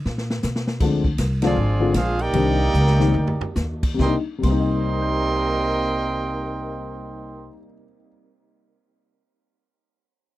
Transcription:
0.05 A#2, snare
0.18 snare
0.30 snare
0.42 B2, snare, hi-hat pedal
0.56 snare
0.67 snare
0.80 D2 D3 F3 G#3 C4 D4, kick, crash
1.04 kick
1.18 C2, kick, snare, hi-hat pedal, ride
1.42 D3 F3 G#3 C4 D4 F4 G#4 D5, snare, ride
1.56 G#1
1.80 D3 F3 G#3 C4 F4
1.93 A#1 G#3 C4 D4 F4 G#4 C5 F5, kick, snare, hi-hat pedal, ride
2.19 A#3 D#4 G4 A#4 D5 G5, ride
2.33 C2 D#3 G3 A#3 C4 D4, kick, ride
2.73 C#2, hi-hat pedal
2.87 snare
2.99 D#3 G3 A#3 C4 D#4, snare
3.14 D2, floor tom
3.27 floor tom
3.41 muted upright bass stroke, floor tom
3.55 D#2, snare, hi-hat pedal
3.83 kick, crash
3.94 C3 G3
3.99 C2 C3 G3 A#3 D4 D#4 A#4 D#5 G5 C6, kick, snare
4.06 D#4
4.38 C3 G3
4.43 C2 C3 G3 A#3 D#4 G4 A#4 D#5 G5 C6, kick, crash
4.47 C4 D#4
4.52 C5
4.60 D#5
4.70 G5
4.79 C6
4.90 D#6
5.02 G6

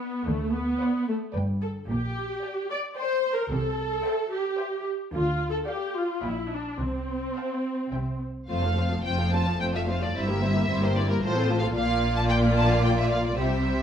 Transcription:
Already playing: B3 D5 G5
0.27 D2 A3
0.54 B3
0.81 C5 D5 F#5
1.08 A3
1.34 G1 G2 B4 D5 G5
1.62 A4
1.89 A#1 A#2 G4
2.43 D5 G5
2.71 D5
2.97 C5 D5 G5
3.35 A#4
3.51 C2 C3 A4
4.05 C5 E5 G5
4.33 G4
4.59 C5 E5 G5
5.14 D2 D3 F4
5.51 A4
5.67 G4 D5 F5
5.96 F4
6.23 A#1 A#2 E4 D5 F5 G5
6.52 D4
6.79 C2 C3 C4
7.36 F5 A5
7.92 C2 C3 E5 G5
8.49 F1 F2 A3 C4 F4 C5 F5
8.63 F3 A3 A4 F5
8.77 A3 C4 F4 C5
8.91 F3 A3 A4 F5
9.04 F1 F2 A3 C4 F4 C5 G5
9.19 F3 A3 A4 F5
9.32 A3 C4 F4 C5 A5
9.47 F3 A3 A4 F5
9.60 F1 F2 A3 C4 F4 C5 G5
9.74 F3 A3 A4 E5 F5
9.87 A3 C4 F4 C5 F5
10.01 F3 A3 A4 D5 F5
10.15 G1 G2 G3 C4 E4 C5 E5
10.28 A#3 E4 G4 A#4
10.42 G3 C4 E4 C5
10.55 A#3 E4 G4 A#4
10.69 G1 G2 G3 C4 E4 C5
10.82 A#3 E4 G4 A#4 C5
10.96 G3 C4 E4 C5 D5
11.09 A#3 E4 G4 A#4
11.23 A1 A2 A3 F4 A4 C5
11.35 C4 F4 A4
11.49 A3 F4 A4 C5
11.59 C4 A4 F5
11.63 F4 A4
11.75 A#1 A#2 A#3 F4 D5 F5
12.16 A5
12.29 G5
12.56 A5
12.71 F5
12.84 G5
12.98 E5
13.11 F5
13.26 D5
13.38 C2 C3 G3 C4 G4 C5 E5

